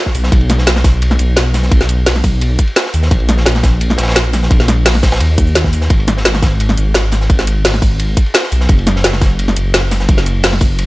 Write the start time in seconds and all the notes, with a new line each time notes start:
0.06 kick, snare
0.15 B1, open hi-hat, ride, shaker
0.24 snare, shaker
0.32 B1, kick, closed hi-hat, ride
0.41 ride
0.49 snare, closed hi-hat, ride, shaker
0.58 snare
0.67 snare, closed hi-hat, ride
0.76 snare
0.84 kick, snare, open hi-hat, ride, shaker
1.02 closed hi-hat, ride
1.11 snare
1.19 B1, closed hi-hat, ride, shaker
1.36 snare, closed hi-hat, ride
1.54 snare, open hi-hat, ride, shaker
1.63 snare, shaker
1.71 B1, kick, closed hi-hat, ride
1.81 snare
1.89 closed hi-hat, ride, shaker
2.06 snare, closed hi-hat, open hi-hat
2.16 snare, ride
2.24 B1, kick, open hi-hat, ride, shaker
2.41 closed hi-hat, ride
2.59 kick, closed hi-hat, ride, shaker
2.67 ride
2.76 snare, closed hi-hat, ride
2.86 snare
2.94 D#2, open hi-hat, ride, shaker
3.03 snare, shaker
3.11 A#1, kick, closed hi-hat, ride
3.20 ride
3.29 snare, closed hi-hat, ride, shaker
3.37 snare
3.46 snare, closed hi-hat, ride
3.55 snare
3.63 kick, snare, open hi-hat, ride, shaker
3.81 closed hi-hat, ride
3.90 snare
3.98 A#1, snare, closed hi-hat, ride, shaker
4.03 snare, ride
4.08 snare, ride
4.11 snare, ride
4.16 snare, closed hi-hat, ride
4.33 snare, open hi-hat, ride, shaker
4.43 snare, shaker
4.51 A#1, kick, closed hi-hat, ride
4.60 snare
4.68 snare, closed hi-hat, ride, shaker
4.85 snare, closed hi-hat, open hi-hat
4.94 snare, ride
5.03 A#1, kick, snare, open hi-hat, ride, shaker
5.12 snare, ride
5.20 D#2, closed hi-hat, ride
5.38 kick, closed hi-hat, shaker
5.47 shaker
5.55 snare, closed hi-hat, ride
5.64 kick, snare
5.73 open hi-hat, ride, shaker
5.81 snare, shaker
5.90 G#1, kick, closed hi-hat, ride
6.00 ride
6.07 snare, closed hi-hat, ride, shaker
6.17 snare
6.25 snare, closed hi-hat, ride
6.34 snare
6.43 kick, snare, open hi-hat, ride, shaker
6.60 closed hi-hat, ride
6.69 snare
6.78 G#1, closed hi-hat, ride, shaker
6.94 snare, closed hi-hat, ride
7.12 snare, open hi-hat, ride, shaker
7.21 snare, shaker
7.30 G#1, kick, closed hi-hat, ride
7.39 snare
7.47 closed hi-hat, ride, shaker
7.65 snare, closed hi-hat, open hi-hat
7.73 snare, ride
7.82 G#1, kick, open hi-hat, ride, shaker
7.99 closed hi-hat, ride
8.17 kick, closed hi-hat, ride, shaker
8.26 ride
8.34 snare, closed hi-hat, ride
8.43 snare
8.52 B1, open hi-hat, ride, shaker
8.61 snare, shaker
8.69 F#1, kick, closed hi-hat, ride
8.79 ride
8.87 snare, closed hi-hat, ride, shaker
8.96 snare
9.04 snare, closed hi-hat, ride
9.13 snare
9.21 kick, snare, open hi-hat, ride, shaker
9.39 closed hi-hat, ride
9.48 snare
9.57 F#1, closed hi-hat, ride, shaker
9.74 snare, closed hi-hat, ride
9.91 snare, open hi-hat, ride, shaker
10.00 snare, shaker
10.08 F#1, kick, closed hi-hat, ride
10.17 snare
10.26 closed hi-hat, ride, shaker
10.43 snare, closed hi-hat, open hi-hat
10.52 snare, ride
10.61 F#1, kick, open hi-hat, ride, shaker
10.79 closed hi-hat, ride